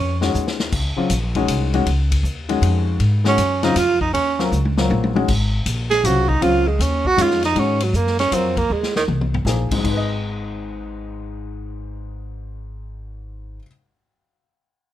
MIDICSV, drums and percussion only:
0, 0, Header, 1, 2, 480
1, 0, Start_track
1, 0, Tempo, 379747
1, 914, Time_signature, 3, 2, 24, 8
1, 18872, End_track
2, 0, Start_track
2, 0, Title_t, "Drums"
2, 275, Note_on_c, 9, 38, 64
2, 401, Note_off_c, 9, 38, 0
2, 435, Note_on_c, 9, 44, 55
2, 562, Note_off_c, 9, 44, 0
2, 598, Note_on_c, 9, 38, 60
2, 725, Note_off_c, 9, 38, 0
2, 756, Note_on_c, 9, 38, 79
2, 882, Note_off_c, 9, 38, 0
2, 915, Note_on_c, 9, 49, 71
2, 917, Note_on_c, 9, 36, 71
2, 1041, Note_off_c, 9, 49, 0
2, 1043, Note_off_c, 9, 36, 0
2, 1386, Note_on_c, 9, 44, 65
2, 1386, Note_on_c, 9, 51, 72
2, 1513, Note_off_c, 9, 44, 0
2, 1513, Note_off_c, 9, 51, 0
2, 1705, Note_on_c, 9, 51, 47
2, 1711, Note_on_c, 9, 36, 61
2, 1831, Note_off_c, 9, 51, 0
2, 1837, Note_off_c, 9, 36, 0
2, 1873, Note_on_c, 9, 44, 64
2, 1873, Note_on_c, 9, 51, 73
2, 2000, Note_off_c, 9, 44, 0
2, 2000, Note_off_c, 9, 51, 0
2, 2194, Note_on_c, 9, 51, 45
2, 2320, Note_off_c, 9, 51, 0
2, 2357, Note_on_c, 9, 51, 59
2, 2483, Note_off_c, 9, 51, 0
2, 2673, Note_on_c, 9, 36, 58
2, 2677, Note_on_c, 9, 51, 74
2, 2799, Note_off_c, 9, 36, 0
2, 2803, Note_off_c, 9, 51, 0
2, 2839, Note_on_c, 9, 44, 50
2, 2966, Note_off_c, 9, 44, 0
2, 3149, Note_on_c, 9, 51, 49
2, 3276, Note_off_c, 9, 51, 0
2, 3320, Note_on_c, 9, 51, 69
2, 3446, Note_off_c, 9, 51, 0
2, 3789, Note_on_c, 9, 51, 59
2, 3915, Note_off_c, 9, 51, 0
2, 4103, Note_on_c, 9, 38, 54
2, 4229, Note_off_c, 9, 38, 0
2, 4270, Note_on_c, 9, 44, 59
2, 4270, Note_on_c, 9, 51, 66
2, 4397, Note_off_c, 9, 44, 0
2, 4397, Note_off_c, 9, 51, 0
2, 4588, Note_on_c, 9, 51, 48
2, 4589, Note_on_c, 9, 38, 55
2, 4714, Note_off_c, 9, 51, 0
2, 4715, Note_off_c, 9, 38, 0
2, 4750, Note_on_c, 9, 44, 61
2, 4750, Note_on_c, 9, 51, 74
2, 4751, Note_on_c, 9, 38, 41
2, 4877, Note_off_c, 9, 44, 0
2, 4877, Note_off_c, 9, 51, 0
2, 4878, Note_off_c, 9, 38, 0
2, 5069, Note_on_c, 9, 36, 59
2, 5196, Note_off_c, 9, 36, 0
2, 5239, Note_on_c, 9, 51, 58
2, 5366, Note_off_c, 9, 51, 0
2, 5552, Note_on_c, 9, 38, 44
2, 5679, Note_off_c, 9, 38, 0
2, 5715, Note_on_c, 9, 44, 62
2, 5716, Note_on_c, 9, 48, 47
2, 5841, Note_off_c, 9, 44, 0
2, 5842, Note_off_c, 9, 48, 0
2, 5880, Note_on_c, 9, 48, 55
2, 6006, Note_off_c, 9, 48, 0
2, 6036, Note_on_c, 9, 38, 77
2, 6163, Note_off_c, 9, 38, 0
2, 6200, Note_on_c, 9, 48, 72
2, 6326, Note_off_c, 9, 48, 0
2, 6365, Note_on_c, 9, 48, 70
2, 6491, Note_off_c, 9, 48, 0
2, 6525, Note_on_c, 9, 48, 90
2, 6651, Note_off_c, 9, 48, 0
2, 6678, Note_on_c, 9, 36, 73
2, 6679, Note_on_c, 9, 49, 73
2, 6805, Note_off_c, 9, 36, 0
2, 6805, Note_off_c, 9, 49, 0
2, 7154, Note_on_c, 9, 44, 52
2, 7154, Note_on_c, 9, 51, 73
2, 7281, Note_off_c, 9, 44, 0
2, 7281, Note_off_c, 9, 51, 0
2, 7473, Note_on_c, 9, 51, 50
2, 7474, Note_on_c, 9, 38, 41
2, 7599, Note_off_c, 9, 51, 0
2, 7600, Note_off_c, 9, 38, 0
2, 7641, Note_on_c, 9, 44, 66
2, 7641, Note_on_c, 9, 51, 67
2, 7768, Note_off_c, 9, 44, 0
2, 7768, Note_off_c, 9, 51, 0
2, 7950, Note_on_c, 9, 36, 51
2, 8076, Note_off_c, 9, 36, 0
2, 8115, Note_on_c, 9, 51, 61
2, 8242, Note_off_c, 9, 51, 0
2, 8601, Note_on_c, 9, 44, 58
2, 8601, Note_on_c, 9, 51, 66
2, 8727, Note_off_c, 9, 44, 0
2, 8727, Note_off_c, 9, 51, 0
2, 8909, Note_on_c, 9, 36, 45
2, 9035, Note_off_c, 9, 36, 0
2, 9079, Note_on_c, 9, 44, 61
2, 9079, Note_on_c, 9, 51, 70
2, 9205, Note_off_c, 9, 44, 0
2, 9205, Note_off_c, 9, 51, 0
2, 9238, Note_on_c, 9, 38, 29
2, 9364, Note_off_c, 9, 38, 0
2, 9386, Note_on_c, 9, 51, 44
2, 9396, Note_on_c, 9, 38, 44
2, 9512, Note_off_c, 9, 51, 0
2, 9523, Note_off_c, 9, 38, 0
2, 9554, Note_on_c, 9, 51, 57
2, 9681, Note_off_c, 9, 51, 0
2, 9864, Note_on_c, 9, 51, 67
2, 9991, Note_off_c, 9, 51, 0
2, 10036, Note_on_c, 9, 44, 50
2, 10162, Note_off_c, 9, 44, 0
2, 10201, Note_on_c, 9, 38, 29
2, 10327, Note_off_c, 9, 38, 0
2, 10351, Note_on_c, 9, 51, 46
2, 10359, Note_on_c, 9, 38, 44
2, 10477, Note_off_c, 9, 51, 0
2, 10486, Note_off_c, 9, 38, 0
2, 10516, Note_on_c, 9, 44, 53
2, 10516, Note_on_c, 9, 51, 67
2, 10643, Note_off_c, 9, 44, 0
2, 10643, Note_off_c, 9, 51, 0
2, 10831, Note_on_c, 9, 36, 59
2, 10833, Note_on_c, 9, 51, 44
2, 10957, Note_off_c, 9, 36, 0
2, 10960, Note_off_c, 9, 51, 0
2, 11164, Note_on_c, 9, 38, 51
2, 11291, Note_off_c, 9, 38, 0
2, 11324, Note_on_c, 9, 38, 63
2, 11451, Note_off_c, 9, 38, 0
2, 11478, Note_on_c, 9, 47, 59
2, 11604, Note_off_c, 9, 47, 0
2, 11643, Note_on_c, 9, 47, 65
2, 11770, Note_off_c, 9, 47, 0
2, 11808, Note_on_c, 9, 43, 82
2, 11935, Note_off_c, 9, 43, 0
2, 11963, Note_on_c, 9, 44, 52
2, 11964, Note_on_c, 9, 38, 56
2, 12089, Note_off_c, 9, 44, 0
2, 12090, Note_off_c, 9, 38, 0
2, 12277, Note_on_c, 9, 36, 67
2, 12278, Note_on_c, 9, 49, 69
2, 12403, Note_off_c, 9, 36, 0
2, 12405, Note_off_c, 9, 49, 0
2, 12443, Note_on_c, 9, 36, 51
2, 12445, Note_on_c, 9, 49, 58
2, 12569, Note_off_c, 9, 36, 0
2, 12571, Note_off_c, 9, 49, 0
2, 18872, End_track
0, 0, End_of_file